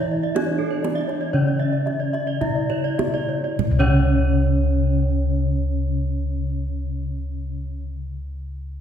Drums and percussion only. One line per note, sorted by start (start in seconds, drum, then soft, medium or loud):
0.36 kendang slap soft
0.36 kendang high soft
0.84 kendang slap soft
0.84 kendang high soft
1.09 kendang slap soft
1.87 kendang slap soft
2.14 kendang slap soft
2.41 kendang slap soft
2.41 kendang low soft
2.70 kendang slap soft
2.99 kendang slap soft
2.99 kendang high soft
2.99 kendang low soft
3.59 kendang low medium